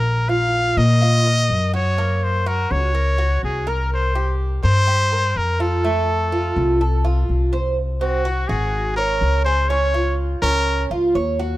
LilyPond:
<<
  \new Staff \with { instrumentName = "Trumpet" } { \time 4/4 \key bes \minor \tempo 4 = 124 bes'8 f''4 ees''2 des''8~ | des''8 c''8 bes'8 des''4. aes'8 bes'8 | c''4 r8 c''4. bes'8 a'8~ | a'2. r4 |
r8 ges'4 aes'4 bes'4 c''8 | des''4 r8 bes'4 r4. | }
  \new Staff \with { instrumentName = "Cuban tres" } { \time 4/4 \key bes \minor bes'8 f'4 bes'8 f'8 bes'4 ges'8 | bes4 ges'4 bes'8 ges'4 bes'8~ | bes'8 g'4 bes'8 g'8 bes'4 f'8 | a4 f'4 a'8 f'4 c''8 |
r8 c'8 ges'8 ges'4 des''4 aes'8 | des'8 f'4 des'4 f'8 des''8 ges'8 | }
  \new Staff \with { instrumentName = "Upright bass" } { \clef bass \time 4/4 \key bes \minor bes,,4. bes,4. ges,4~ | ges,4. des,4. c,4~ | c,4. g,4. f,4~ | f,4. c,4. c,4~ |
c,4. aes,,4. des,4~ | des,4. des,4 des,8 ees,4 | }
>>